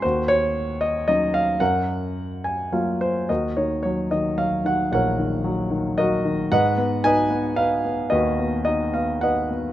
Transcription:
0.02 1.57 D#2 medium
0.02 0.78 F#4 medium
0.02 0.30 C5 medium
0.28 0.83 C#5 loud
0.81 1.06 D#5 medium
1.08 1.59 F#3 soft
1.08 1.59 C#4 soft
1.08 1.60 D#4 soft
1.08 1.32 D#5 medium
1.34 1.61 F5 medium
1.60 3.26 F#2 medium
1.60 2.98 A#4 medium
1.60 2.97 F#5 medium
2.44 2.71 G#5 medium
2.72 3.28 F#3 soft
2.72 3.28 A#3 soft
2.72 3.28 F4 soft
2.72 2.99 F5 medium
3.01 3.27 C5 medium
3.29 4.88 D#2 soft
3.29 4.08 F#4 soft
3.29 4.08 A#4 soft
3.29 3.55 D#5 medium
3.57 4.10 D#3 soft
3.57 3.81 C#5 medium
3.83 4.36 F#3 soft
3.83 4.12 C#5 medium
4.11 4.63 D#3 soft
4.11 4.39 D#5 medium
4.38 5.41 F#3 soft
4.38 4.66 F5 medium
4.65 5.17 D#3 soft
4.65 4.91 F#5 medium
4.92 6.47 A#1 medium
4.92 5.95 A#4 medium
4.92 5.95 C#5 medium
4.92 5.95 F#5 medium
5.19 5.69 D#3 soft
5.44 5.96 F#3 medium
5.71 6.23 D#3 medium
5.98 6.50 F#3 soft
5.98 6.48 F#4 medium
5.98 6.48 A#4 medium
5.98 6.51 D#5 medium
6.25 6.51 D#3 medium
6.52 8.08 G#2 medium
6.52 7.04 B4 medium
6.52 7.05 D#5 medium
6.52 7.06 F#5 medium
6.78 7.29 B3 medium
7.04 7.56 D#4 medium
7.04 7.57 B4 medium
7.04 7.82 D#5 medium
7.04 7.54 G#5 loud
7.30 7.83 B3 medium
7.56 8.63 D#4 soft
7.56 8.10 B4 medium
7.56 8.13 F5 medium
7.85 8.38 B3 soft
8.10 9.73 D#2 medium
8.10 8.90 F#4 medium
8.10 8.90 B4 medium
8.10 8.63 D#5 medium
8.39 8.92 B3 soft
8.65 9.21 D#4 soft
8.65 8.94 D#5 medium
8.94 9.49 B3 soft
8.94 9.20 F5 medium
9.21 9.73 D#4 soft
9.21 9.73 B4 medium
9.21 9.73 D#5 medium
9.21 9.73 F#5 medium
9.51 9.73 B3 soft

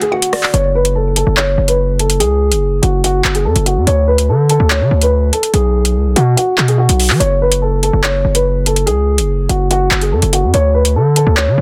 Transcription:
0.00 0.51 D3 medium
0.00 0.52 A3 medium
0.00 0.51 B3 medium
0.00 0.10 G#4 medium
0.00 closed hi-hat medium
0.12 0.51 F#4 medium
0.12 0.32 F#5 medium
0.22 closed hi-hat medium
0.33 0.53 D5 medium
0.33 cross-stick medium
0.33 open hi-hat medium
0.43 clap medium
0.53 1.24 F#1 loud
0.53 0.70 C#5 loud
0.53 closed hi-hat medium
0.75 0.92 B4 medium
0.85 closed hi-hat medium
0.95 1.12 A4 medium
1.16 1.33 A4 medium
1.16 closed hi-hat medium
1.27 1.57 F#1 loud
1.37 1.66 C#5 medium
1.37 clap loud
1.58 2.22 F#1 loud
1.68 1.98 B4 medium
1.68 closed hi-hat medium
1.99 2.16 A4 medium
1.99 closed hi-hat medium
2.10 closed hi-hat medium
2.20 2.53 C#2 loud
2.20 2.79 G#4 loud
2.20 closed hi-hat medium
2.51 2.81 F#1 loud
2.51 closed hi-hat medium
2.82 3.23 F#1 loud
2.82 2.99 F#4 medium
2.82 closed hi-hat medium
3.04 3.33 F#4 loud
3.04 closed hi-hat medium
3.25 3.47 F#1 loud
3.25 clap loud
3.35 3.43 G#4 medium
3.35 closed hi-hat medium
3.45 3.55 F#2 loud
3.45 3.62 A4 medium
3.56 3.78 F#1 loud
3.56 closed hi-hat medium
3.66 3.83 F#4 medium
3.66 closed hi-hat medium
3.77 3.86 F#2 loud
3.87 4.30 D2 loud
3.87 4.04 C#5 loud
3.87 closed hi-hat medium
4.08 4.24 B4 medium
4.18 closed hi-hat medium
4.29 4.58 D3 loud
4.29 4.46 A4 medium
4.50 4.67 A4 medium
4.50 closed hi-hat medium
4.60 4.82 D2 loud
4.70 5.00 C#5 medium
4.70 clap loud
4.81 4.91 D3 loud
4.91 5.31 D2 loud
5.01 5.32 B4 medium
5.01 closed hi-hat medium
5.33 5.49 A4 medium
5.33 closed hi-hat medium
5.43 closed hi-hat medium
5.54 5.97 B1 loud
5.54 6.12 G#4 loud
5.54 closed hi-hat medium
5.85 closed hi-hat medium
5.95 6.07 C#2 loud
6.06 6.16 B1 loud
6.16 6.36 B2 loud
6.16 6.33 F#4 medium
6.16 closed hi-hat medium
6.37 6.66 F#4 medium
6.37 closed hi-hat medium
6.58 6.88 B2 loud
6.58 clap loud
6.68 6.77 G#4 medium
6.68 closed hi-hat medium
6.78 7.18 F#4 medium
6.89 7.12 B1 loud
6.89 closed hi-hat medium
7.00 open hi-hat medium
7.10 7.20 F#3 loud
7.10 clap medium
7.20 7.90 F#1 loud
7.20 7.37 C#5 loud
7.20 closed hi-hat medium
7.42 7.58 B4 medium
7.52 closed hi-hat medium
7.62 7.79 A4 medium
7.83 8.00 A4 medium
7.83 closed hi-hat medium
7.93 8.23 F#1 loud
8.03 8.33 C#5 medium
8.03 clap loud
8.25 8.88 F#1 loud
8.35 8.64 B4 medium
8.35 closed hi-hat medium
8.66 8.83 A4 medium
8.66 closed hi-hat medium
8.76 closed hi-hat medium
8.87 9.20 C#2 loud
8.87 9.46 G#4 loud
8.87 closed hi-hat medium
9.18 9.48 F#1 loud
9.18 closed hi-hat medium
9.49 9.90 F#1 loud
9.49 9.66 F#4 medium
9.49 closed hi-hat medium
9.71 10.00 F#4 loud
9.71 closed hi-hat medium
9.91 10.13 F#1 loud
9.91 clap loud
10.01 10.10 G#4 medium
10.01 closed hi-hat medium
10.12 10.22 F#2 loud
10.12 10.29 A4 medium
10.22 10.45 F#1 loud
10.22 closed hi-hat medium
10.33 10.50 F#4 medium
10.33 closed hi-hat medium
10.43 10.53 F#2 loud
10.54 10.97 D2 loud
10.54 10.71 C#5 loud
10.54 closed hi-hat medium
10.74 10.91 B4 medium
10.85 closed hi-hat medium
10.95 11.25 D3 loud
10.95 11.12 A4 medium
11.16 11.33 A4 medium
11.16 closed hi-hat medium
11.27 11.49 D2 loud
11.37 11.61 C#5 medium
11.37 clap loud
11.47 11.57 D3 loud
11.58 11.61 D2 loud

